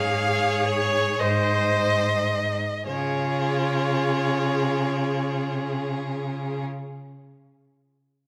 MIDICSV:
0, 0, Header, 1, 5, 480
1, 0, Start_track
1, 0, Key_signature, -5, "major"
1, 0, Tempo, 944882
1, 351, Tempo, 1045296
1, 831, Tempo, 1129944
1, 1311, Tempo, 1065719
1, 1312, Time_signature, 6, 3, 24, 8
1, 2751, Tempo, 1043478
1, 3767, End_track
2, 0, Start_track
2, 0, Title_t, "Violin"
2, 0, Program_c, 0, 40
2, 0, Note_on_c, 0, 77, 114
2, 344, Note_off_c, 0, 77, 0
2, 347, Note_on_c, 0, 73, 123
2, 585, Note_on_c, 0, 75, 109
2, 592, Note_off_c, 0, 73, 0
2, 1310, Note_off_c, 0, 75, 0
2, 1313, Note_on_c, 0, 73, 99
2, 3013, Note_off_c, 0, 73, 0
2, 3767, End_track
3, 0, Start_track
3, 0, Title_t, "Violin"
3, 0, Program_c, 1, 40
3, 0, Note_on_c, 1, 73, 89
3, 584, Note_on_c, 1, 72, 89
3, 591, Note_off_c, 1, 73, 0
3, 1195, Note_off_c, 1, 72, 0
3, 1310, Note_on_c, 1, 68, 72
3, 3010, Note_off_c, 1, 68, 0
3, 3767, End_track
4, 0, Start_track
4, 0, Title_t, "Viola"
4, 0, Program_c, 2, 41
4, 0, Note_on_c, 2, 68, 105
4, 585, Note_on_c, 2, 72, 94
4, 592, Note_off_c, 2, 68, 0
4, 951, Note_off_c, 2, 72, 0
4, 1310, Note_on_c, 2, 65, 92
4, 3010, Note_off_c, 2, 65, 0
4, 3767, End_track
5, 0, Start_track
5, 0, Title_t, "Cello"
5, 0, Program_c, 3, 42
5, 0, Note_on_c, 3, 44, 79
5, 574, Note_off_c, 3, 44, 0
5, 585, Note_on_c, 3, 44, 85
5, 1184, Note_off_c, 3, 44, 0
5, 1314, Note_on_c, 3, 49, 84
5, 3014, Note_off_c, 3, 49, 0
5, 3767, End_track
0, 0, End_of_file